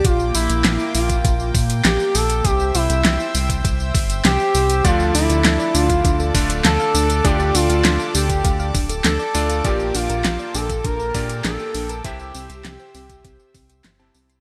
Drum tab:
HH |x-oxx-oxx-oxx-ox|x-oxx-oxx-oxx-ox|x-oxx-oxx-oxx-ox|x-oxx-oxx-oxx-ox|
TB |xxxxxxxxxxxxxxxx|xxxxxxxxxxxxxxxx|xxxxxxxxxxxxxxxx|xxxxxxxxxxxxxxxx|
CP |----x-------x---|----x-------x---|----x-------x---|----x-------x---|
SD |----o-------o---|----o-------o---|----o-------o---|----o-------o---|
BD |o------oo-o-----|o------oo-o-----|o------oo-o-----|o------oo-o-----|

HH |x-oxx-oxx-oxx-ox|x-oxx-oxx-oxx-ox|
TB |xxxxxxxxxxxxxxxx|xxxxxxxxxxxxxxxx|
CP |----x-------x---|----x-------x---|
SD |----o-------o---|----o-------o---|
BD |o------oo-o-----|o------oo-o-----|